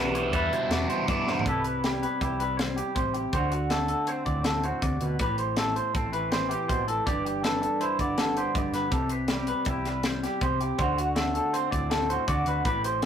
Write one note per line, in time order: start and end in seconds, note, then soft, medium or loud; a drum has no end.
0.00 0.33 B1 medium
0.00 0.31 E3 medium
0.00 1.06 E3 medium
0.00 0.15 G3 medium
0.00 1.45 G3 medium
0.00 0.14 B3 medium
0.00 0.14 D4 medium
0.00 0.13 E4 medium
0.00 0.70 F#4 medium
0.00 0.15 B4 medium
0.14 0.32 G3 medium
0.14 0.33 B3 medium
0.14 1.43 D4 medium
0.14 0.34 E4 medium
0.14 0.33 C5 medium
0.14 closed hi-hat medium
0.33 0.48 E2 medium
0.33 0.70 E3 medium
0.33 0.70 G3 medium
0.33 0.71 B3 loud
0.33 0.72 E4 loud
0.33 1.43 A4 medium
0.33 0.53 B4 medium
0.33 kick medium
0.33 closed hi-hat medium
0.52 1.43 B2 medium
0.52 0.71 C5 medium
0.52 closed hi-hat medium
0.70 0.85 E2 medium
0.70 1.05 E3 medium
0.70 0.89 G3 medium
0.70 0.88 B3 medium
0.70 0.87 E4 medium
0.70 1.44 F#4 medium
0.70 0.89 D5 medium
0.70 snare loud
0.70 closed hi-hat medium
0.89 1.06 G3 soft
0.89 1.07 B3 medium
0.89 1.07 E4 medium
0.89 1.08 C5 medium
0.89 closed hi-hat medium
1.07 1.38 G2 medium
1.07 1.44 E3 medium
1.07 1.26 E3 medium
1.07 1.44 G3 medium
1.07 1.44 B3 medium
1.07 1.45 E4 loud
1.07 1.28 D5 medium
1.07 kick loud
1.07 snare soft
1.07 closed hi-hat medium
1.27 1.46 D3 medium
1.27 1.46 C5 medium
1.27 snare medium
1.39 floor tom medium
1.46 2.05 C2 medium
1.46 2.95 C3 medium
1.46 1.82 G3 medium
1.46 2.20 E4 medium
1.46 2.77 G4 medium
1.46 1.65 A4 medium
1.46 3.32 B4 medium
1.46 kick medium
1.46 closed hi-hat medium
1.64 1.83 B4 medium
1.64 closed hi-hat medium
1.83 2.38 G3 medium
1.83 2.02 G4 medium
1.83 snare loud
1.83 closed hi-hat medium
2.02 2.21 B4 medium
2.02 closed hi-hat medium
2.21 2.80 C2 medium
2.21 3.31 E4 medium
2.21 2.39 G4 medium
2.21 kick medium
2.21 closed hi-hat medium
2.39 3.31 G3 medium
2.39 2.57 B4 medium
2.39 closed hi-hat medium
2.57 2.76 C5 medium
2.57 snare loud
2.57 closed hi-hat medium
2.76 2.95 G4 medium
2.76 2.96 G4 soft
2.76 closed hi-hat medium
2.95 3.25 A1 medium
2.95 3.31 C3 medium
2.95 3.31 G4 medium
2.95 3.14 C5 medium
2.95 kick medium
2.95 closed hi-hat medium
3.14 3.33 G4 medium
3.14 closed hi-hat medium
3.33 3.92 D2 medium
3.33 5.21 D3 medium
3.33 4.64 F#4 medium
3.33 3.52 C5 medium
3.33 kick loud
3.33 closed hi-hat medium
3.51 3.70 F#4 medium
3.51 closed hi-hat medium
3.70 5.24 A3 medium
3.70 3.87 A4 medium
3.70 snare loud
3.70 closed hi-hat medium
3.88 4.08 A4 medium
3.88 closed hi-hat medium
4.07 5.95 C4 medium
4.07 4.25 C5 medium
4.07 closed hi-hat medium
4.26 4.70 D2 medium
4.26 4.82 A2 medium
4.26 4.44 D5 medium
4.26 kick medium
4.26 closed hi-hat soft
4.44 4.64 A4 medium
4.44 snare loud
4.44 closed hi-hat medium
4.64 5.18 F#4 medium
4.64 4.82 C5 medium
4.64 closed hi-hat medium
4.82 4.97 D2 medium
4.82 5.01 C3 medium
4.82 5.02 D5 medium
4.82 kick loud
4.82 closed hi-hat medium
5.01 5.16 D2 medium
5.01 5.20 B2 medium
5.01 5.20 B4 medium
5.01 closed hi-hat medium
5.19 5.78 A1 medium
5.19 6.70 A2 medium
5.19 6.52 G4 medium
5.19 5.38 B4 medium
5.19 kick loud
5.19 closed hi-hat medium
5.38 5.57 C5 medium
5.38 closed hi-hat medium
5.57 7.05 A3 medium
5.57 5.75 A4 medium
5.57 snare loud
5.57 closed hi-hat medium
5.76 5.94 C5 medium
5.76 closed hi-hat medium
5.94 6.53 A1 medium
5.94 7.07 C4 medium
5.94 6.12 A4 medium
5.94 kick medium
5.94 closed hi-hat medium
6.13 8.00 E3 medium
6.13 6.31 B4 medium
6.13 closed hi-hat medium
6.32 6.50 C5 medium
6.32 snare loud
6.32 closed hi-hat medium
6.49 6.68 G4 medium
6.49 7.07 G4 soft
6.49 closed hi-hat medium
6.68 6.99 A1 medium
6.68 6.88 B2 medium
6.68 6.87 C5 medium
6.68 kick loud
6.68 closed hi-hat medium
6.88 7.06 A2 medium
6.88 7.06 A4 medium
6.88 closed hi-hat medium
7.06 7.65 G1 medium
7.06 8.53 G2 medium
7.06 8.36 G4 medium
7.06 7.25 D5 medium
7.06 kick medium
7.06 closed hi-hat medium
7.25 7.43 G4 medium
7.25 closed hi-hat medium
7.43 9.28 G3 medium
7.43 7.60 A4 medium
7.43 snare loud
7.43 closed hi-hat medium
7.62 7.81 A4 medium
7.62 closed hi-hat medium
7.81 8.90 E4 medium
7.81 7.99 C5 medium
7.81 closed hi-hat medium
7.99 8.43 G1 medium
7.99 8.93 D3 medium
7.99 8.19 D5 medium
7.99 kick medium
7.99 closed hi-hat medium
8.18 8.37 A4 medium
8.18 snare loud
8.18 closed hi-hat medium
8.37 8.54 G4 medium
8.37 8.55 C5 medium
8.37 closed hi-hat medium
8.54 8.70 G1 medium
8.54 8.90 G2 medium
8.54 8.90 G4 medium
8.54 8.74 D5 medium
8.54 kick loud
8.54 closed hi-hat medium
8.72 8.88 G1 medium
8.72 8.92 B4 medium
8.72 snare soft
8.72 closed hi-hat medium
8.90 9.51 C2 medium
8.90 10.40 C3 medium
8.90 10.22 G4 medium
8.90 9.10 A4 medium
8.90 kick loud
8.90 closed hi-hat medium
9.10 9.29 B4 medium
9.10 closed hi-hat medium
9.28 9.84 G3 medium
9.28 9.48 G4 medium
9.28 snare loud
9.28 closed hi-hat medium
9.47 9.67 B4 medium
9.47 closed hi-hat medium
9.65 10.25 C2 medium
9.65 10.77 E4 medium
9.65 9.86 G4 medium
9.65 kick loud
9.65 closed hi-hat medium
9.85 10.76 G3 medium
9.85 10.05 B4 medium
9.85 snare soft
9.85 closed hi-hat medium
10.03 10.23 C5 medium
10.03 snare loud
10.03 closed hi-hat medium
10.23 10.42 G4 medium
10.23 snare soft
10.23 closed hi-hat medium
10.41 10.71 C2 medium
10.41 10.77 C3 medium
10.41 10.77 G4 medium
10.41 10.60 C5 medium
10.41 kick loud
10.41 closed hi-hat medium
10.60 10.79 G4 medium
10.60 closed hi-hat medium
10.78 11.37 D2 loud
10.78 12.26 D3 medium
10.78 12.09 F#4 medium
10.78 10.97 C5 medium
10.78 kick loud
10.78 closed hi-hat medium
10.97 11.15 F#4 medium
10.97 closed hi-hat medium
11.15 12.69 A3 medium
11.15 11.33 A4 medium
11.15 snare loud
11.15 closed hi-hat medium
11.34 11.53 A4 medium
11.34 closed hi-hat medium
11.53 13.05 C4 medium
11.53 11.71 C5 medium
11.53 closed hi-hat medium
11.71 12.16 D2 medium
11.71 12.28 A2 medium
11.71 11.90 D5 medium
11.71 kick medium
11.71 closed hi-hat medium
11.90 12.09 A4 medium
11.90 snare loud
11.90 closed hi-hat medium
12.10 12.26 F#4 medium
12.10 12.28 C5 medium
12.10 closed hi-hat medium
12.27 12.42 D2 medium
12.27 12.64 D3 medium
12.27 12.62 F#4 medium
12.27 12.46 D5 medium
12.27 kick loud
12.27 closed hi-hat medium
12.46 12.61 D2 medium
12.46 12.64 B4 medium
12.46 closed hi-hat medium
12.65 13.05 A1 medium
12.65 13.05 A2 medium
12.65 13.05 G4 medium
12.65 12.83 B4 medium
12.65 kick loud
12.65 closed hi-hat medium
12.84 13.02 C5 medium
12.84 closed hi-hat medium